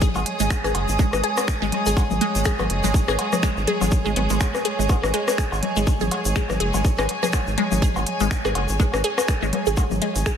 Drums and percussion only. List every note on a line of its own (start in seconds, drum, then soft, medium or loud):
0.01 kick loud
0.01 shaker medium
0.15 cowbell medium
0.15 shaker soft
0.26 closed hi-hat loud
0.40 closed hi-hat soft
0.40 shaker medium
0.50 finger snap loud
0.50 kick loud
0.50 shaker medium
0.64 cross-stick medium
0.64 shaker soft
0.75 closed hi-hat loud
0.75 cowbell medium
0.89 shaker medium
0.99 kick loud
0.99 shaker medium
1.13 cross-stick medium
1.13 shaker soft
1.24 closed hi-hat loud
1.37 cross-stick medium
1.37 cowbell medium
1.37 shaker medium
1.48 finger snap medium
1.48 kick loud
1.48 shaker medium
1.62 shaker soft
1.72 closed hi-hat loud
1.72 low conga medium
1.86 shaker medium
1.97 kick loud
1.97 cowbell medium
1.97 shaker medium
2.10 high tom medium
2.10 shaker soft
2.21 closed hi-hat loud
2.35 closed hi-hat soft
2.35 shaker medium
2.45 finger snap loud
2.45 kick loud
2.45 shaker medium
2.59 cross-stick medium
2.59 high tom medium
2.59 cowbell medium
2.59 shaker soft
2.70 closed hi-hat loud
2.84 low conga medium
2.84 shaker medium
2.94 kick loud
2.94 shaker medium
3.08 cross-stick medium
3.08 shaker soft
3.19 closed hi-hat medium
3.19 cowbell medium
3.33 cross-stick medium
3.33 high tom medium
3.33 shaker medium
3.43 finger snap medium
3.43 kick loud
3.43 shaker medium
3.57 shaker soft
3.67 closed hi-hat loud
3.67 low conga medium
3.81 high tom medium
3.81 cowbell medium
3.81 shaker medium
3.91 kick loud
3.91 shaker medium
4.05 shaker soft
4.16 closed hi-hat loud
4.30 closed hi-hat soft
4.30 shaker medium
4.41 finger snap medium
4.41 kick loud
4.41 cowbell medium
4.41 shaker medium
4.55 cross-stick medium
4.55 shaker soft
4.65 closed hi-hat loud
4.80 shaker medium
4.89 kick loud
4.89 cowbell medium
4.89 shaker medium
5.03 cross-stick medium
5.03 shaker soft
5.14 closed hi-hat medium
5.28 cross-stick medium
5.28 shaker medium
5.38 finger snap medium
5.38 kick loud
5.38 shaker medium
5.52 cowbell medium
5.52 shaker soft
5.63 closed hi-hat loud
5.63 low conga medium
5.76 shaker medium
5.87 kick loud
5.87 shaker medium
6.00 high tom medium
6.00 shaker soft
6.11 closed hi-hat medium
6.11 cowbell medium
6.25 closed hi-hat soft
6.25 shaker medium
6.36 finger snap medium
6.36 kick loud
6.36 shaker medium
6.50 cross-stick medium
6.50 high tom soft
6.50 shaker soft
6.60 closed hi-hat medium
6.74 cowbell medium
6.74 low conga medium
6.74 shaker medium
6.85 kick loud
6.85 shaker medium
6.98 cross-stick medium
6.98 shaker soft
7.09 closed hi-hat medium
7.23 cross-stick medium
7.23 high tom medium
7.23 shaker medium
7.33 finger snap medium
7.33 kick loud
7.33 cowbell medium
7.33 shaker medium
7.47 shaker soft
7.58 closed hi-hat medium
7.58 low conga medium
7.72 high tom medium
7.72 shaker medium
7.82 kick loud
7.82 shaker medium
7.96 cowbell medium
7.96 shaker soft
8.06 closed hi-hat medium
8.20 closed hi-hat soft
8.20 shaker medium
8.31 finger snap medium
8.31 kick loud
8.31 shaker medium
8.45 cross-stick medium
8.45 shaker soft
8.55 closed hi-hat medium
8.55 cowbell medium
8.69 shaker medium
8.80 kick loud
8.80 shaker medium
8.93 cross-stick medium
8.93 shaker soft
9.04 closed hi-hat medium
9.18 cross-stick medium
9.18 cowbell medium
9.18 shaker medium
9.28 finger snap medium
9.28 kick loud
9.28 shaker medium
9.43 shaker soft
9.53 closed hi-hat medium
9.53 low conga medium
9.66 shaker medium
9.77 kick loud
9.77 cowbell medium
9.77 shaker medium
9.91 high tom medium
9.91 shaker soft
10.02 closed hi-hat medium
10.16 closed hi-hat soft
10.16 shaker medium
10.26 finger snap medium
10.26 kick loud
10.26 shaker medium